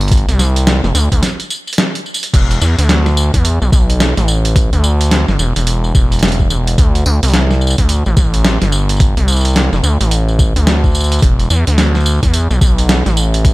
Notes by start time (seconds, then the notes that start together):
Already playing: G1
0.01 closed hi-hat, tambourine
0.08 kick, closed hi-hat
0.12 closed hi-hat, tambourine
0.17 closed hi-hat
0.29 C2, closed hi-hat, tambourine
0.39 snare, tambourine
0.56 closed hi-hat, tambourine
0.67 snare, closed hi-hat, tambourine
0.84 F1, snare, tambourine
0.95 D2, closed hi-hat, tambourine
1.12 D2, kick, closed hi-hat, tambourine
1.23 snare, closed hi-hat, tambourine
1.40 closed hi-hat, tambourine
1.50 tambourine
1.67 tambourine
1.73 closed hi-hat
1.78 snare, closed hi-hat, tambourine
1.95 closed hi-hat
2.06 tambourine
2.14 tambourine
2.23 closed hi-hat, tambourine
2.34 E1, kick, closed hi-hat, crash, tambourine
2.51 closed hi-hat, tambourine
2.61 E2, tambourine
2.79 D2, closed hi-hat, tambourine
2.89 snare, closed hi-hat, tambourine
3.06 snare, tambourine
3.17 tambourine
3.34 E2, kick, closed hi-hat, tambourine
3.45 closed hi-hat, tambourine
3.62 B1, tambourine
3.72 B1, kick, tambourine
3.90 closed hi-hat, tambourine
4.00 snare, closed hi-hat, tambourine
4.17 A1, snare, closed hi-hat, tambourine
4.28 tambourine
4.45 closed hi-hat, tambourine
4.56 kick, closed hi-hat, tambourine
4.73 D2, closed hi-hat, tambourine
4.84 tambourine
5.01 closed hi-hat, tambourine
5.11 snare, closed hi-hat, tambourine
5.28 G1, snare, tambourine
5.39 E1, tambourine
5.56 E1, closed hi-hat, tambourine
5.67 closed hi-hat, tambourine
5.84 tambourine
5.95 E1, kick, tambourine
6.12 closed hi-hat, tambourine
6.13 closed hi-hat
6.19 snare, closed hi-hat
6.23 closed hi-hat, tambourine
6.28 closed hi-hat
6.32 closed hi-hat
6.39 kick, tambourine
6.50 E1, tambourine
6.67 closed hi-hat, tambourine
6.78 D2, kick, closed hi-hat, tambourine
6.95 closed hi-hat, tambourine
7.06 D2, tambourine
7.23 C2, closed hi-hat, tambourine
7.25 closed hi-hat
7.28 closed hi-hat
7.30 closed hi-hat
7.32 snare, closed hi-hat
7.34 closed hi-hat, tambourine
7.51 snare, tambourine
7.61 tambourine
7.67 tambourine
7.70 tambourine
7.78 D2, kick, closed hi-hat, tambourine
7.89 closed hi-hat, tambourine
8.06 A1, tambourine
8.17 A1, kick, tambourine
8.34 closed hi-hat, tambourine
8.45 snare, closed hi-hat, tambourine
8.62 G1, snare, closed hi-hat, tambourine
8.72 tambourine
8.89 closed hi-hat, tambourine
8.91 tambourine
8.97 closed hi-hat, tambourine
9.00 kick, tambourine
9.17 C2, closed hi-hat, tambourine
9.28 tambourine
9.32 tambourine
9.37 tambourine
9.41 tambourine
9.45 closed hi-hat, tambourine
9.48 tambourine
9.50 tambourine
9.53 snare, closed hi-hat, tambourine
9.56 tambourine
9.73 F1, snare, tambourine
9.83 D2, tambourine
10.01 A1, closed hi-hat, tambourine
10.11 closed hi-hat, tambourine
10.28 tambourine
10.39 kick, tambourine
10.56 D2, closed hi-hat, tambourine
10.67 snare, closed hi-hat, tambourine
10.84 kick, tambourine
10.86 tambourine
10.89 tambourine
10.91 tambourine
10.93 tambourine
10.95 tambourine
11.00 tambourine
11.04 tambourine
11.12 closed hi-hat, tambourine
11.19 E1, kick, closed hi-hat, tambourine
11.22 tambourine
11.39 closed hi-hat, tambourine
11.50 E2, tambourine
11.67 D2, closed hi-hat, tambourine
11.78 snare, closed hi-hat, tambourine
11.95 snare, tambourine
12.00 tambourine
12.06 tambourine
12.23 E2, kick, closed hi-hat, tambourine
12.34 closed hi-hat, tambourine
12.51 B1, tambourine
12.61 B1, kick, tambourine
12.78 closed hi-hat, tambourine
12.89 snare, closed hi-hat, tambourine
13.06 A1, snare, closed hi-hat, tambourine
13.17 tambourine
13.34 closed hi-hat, tambourine
13.45 kick, closed hi-hat, tambourine